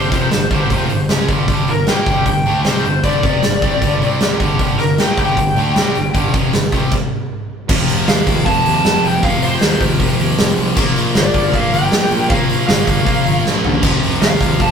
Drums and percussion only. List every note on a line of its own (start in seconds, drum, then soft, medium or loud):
0.12 kick loud
0.12 snare soft
0.12 open hi-hat medium
0.31 snare loud
0.31 open hi-hat medium
0.51 kick loud
0.51 open hi-hat soft
0.70 kick medium
0.70 open hi-hat medium
0.89 open hi-hat soft
1.09 snare medium
1.09 open hi-hat medium
1.29 kick medium
1.29 open hi-hat soft
1.48 kick medium
1.48 open hi-hat medium
1.68 open hi-hat soft
1.87 snare loud
1.87 open hi-hat medium
2.06 kick loud
2.06 open hi-hat soft
2.26 kick medium
2.26 open hi-hat medium
2.46 open hi-hat soft
2.65 snare loud
2.65 open hi-hat medium
2.84 open hi-hat soft
3.03 kick medium
3.03 open hi-hat medium
3.23 kick loud
3.23 open hi-hat soft
3.42 snare medium
3.42 open hi-hat medium
3.62 kick loud
3.62 open hi-hat soft
3.82 kick medium
3.82 open hi-hat medium
4.02 open hi-hat soft
4.20 snare loud
4.20 open hi-hat medium
4.40 kick medium
4.40 open hi-hat soft
4.59 kick medium
4.59 open hi-hat medium
4.78 snare soft
4.78 open hi-hat medium
4.98 snare loud
4.98 open hi-hat medium
5.17 kick medium
5.17 open hi-hat soft
5.37 kick medium
5.37 open hi-hat medium
5.56 open hi-hat soft
5.76 snare loud
5.76 open hi-hat medium
5.95 open hi-hat soft
6.15 kick medium
6.15 open hi-hat medium
6.34 kick loud
6.34 open hi-hat soft
6.53 snare loud
6.53 open hi-hat medium
6.72 kick medium
6.72 open hi-hat soft
6.91 kick medium
6.91 crash medium
7.69 kick loud
7.69 crash loud
7.89 open hi-hat medium
8.08 snare loud
8.08 open hi-hat medium
8.27 kick medium
8.27 open hi-hat medium
8.46 kick medium
8.46 open hi-hat medium
8.66 open hi-hat medium
8.85 snare loud
8.85 open hi-hat medium
9.04 open hi-hat medium
9.23 kick loud
9.23 open hi-hat medium
9.42 open hi-hat medium
9.61 snare loud
9.61 open hi-hat medium
9.81 kick medium
9.81 open hi-hat medium
10.00 kick medium
10.00 open hi-hat medium
10.19 open hi-hat medium
10.38 snare loud
10.38 open hi-hat medium
10.58 open hi-hat medium
10.77 kick loud
10.77 crash loud
10.96 open hi-hat medium
11.15 snare loud
11.15 open hi-hat medium
11.34 kick medium
11.34 open hi-hat medium
11.54 kick medium
11.54 open hi-hat medium
11.73 open hi-hat medium
11.92 snare loud
11.92 open hi-hat medium
12.11 open hi-hat medium
12.30 kick loud
12.30 open hi-hat medium
12.49 open hi-hat medium
12.68 snare loud
12.68 open hi-hat medium
12.87 kick medium
12.87 open hi-hat medium
13.07 kick medium
13.07 open hi-hat medium
13.26 open hi-hat medium
13.46 snare medium
13.64 floor tom medium
13.83 kick loud
13.83 splash medium
13.83 crash loud
14.03 open hi-hat medium
14.21 snare loud
14.21 open hi-hat medium
14.41 kick medium
14.41 open hi-hat medium
14.60 kick medium
14.60 open hi-hat medium